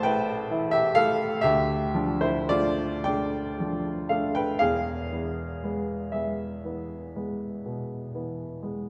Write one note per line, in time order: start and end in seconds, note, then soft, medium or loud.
0.00 1.38 A1 medium
0.00 1.39 A2 medium
0.00 0.51 E3 medium
0.00 0.05 A3 medium
0.00 0.05 E4 loud
0.00 1.45 C5 loud
0.00 0.72 G5 loud
0.00 1.44 A5 loud
0.05 0.46 A3 medium
0.05 0.46 E4 medium
0.05 0.68 B4 medium
0.51 0.92 E3 medium
0.51 0.92 E4 medium
0.71 0.94 G4 medium
0.71 0.95 E5 loud
0.95 1.39 A3 medium
0.95 1.39 E4 medium
0.95 1.39 A4 medium
0.95 1.42 F5 loud
1.41 4.57 D2 medium
1.41 2.17 G4 medium
1.41 2.20 E5 loud
1.95 2.46 F3 medium
1.95 2.46 D4 medium
2.21 2.47 E4 medium
2.21 2.49 C5 medium
2.49 3.03 A3 medium
2.49 3.03 D4 medium
2.49 3.03 F4 medium
2.49 3.04 D5 loud
3.04 3.56 A3 soft
3.04 3.56 D4 medium
3.04 4.06 D5 medium
3.04 4.09 G5 loud
3.60 4.06 F3 soft
3.60 4.07 D4 medium
4.09 4.56 A3 soft
4.09 4.57 D4 medium
4.09 4.33 A4 medium
4.09 4.35 F5 medium
4.35 4.59 B4 medium
4.35 4.60 G5 loud
4.59 7.61 E1 medium
4.59 7.62 E2 medium
4.59 6.08 G#4 medium
4.59 6.12 F5 loud
5.12 5.59 E3 soft
5.12 5.59 B3 soft
5.64 6.09 G#3 soft
5.64 6.09 B3 medium
6.12 6.60 G#3 soft
6.12 6.60 B3 soft
6.12 8.89 G#4 soft
6.12 8.89 E5 medium
6.65 7.12 E3 soft
6.65 7.12 B3 soft
7.16 7.62 G#3 soft
7.16 7.62 B3 soft
7.66 8.43 B2 soft
8.14 8.59 E3 soft
8.14 8.59 B3 soft
8.63 8.89 G#3 soft
8.63 8.89 B3 soft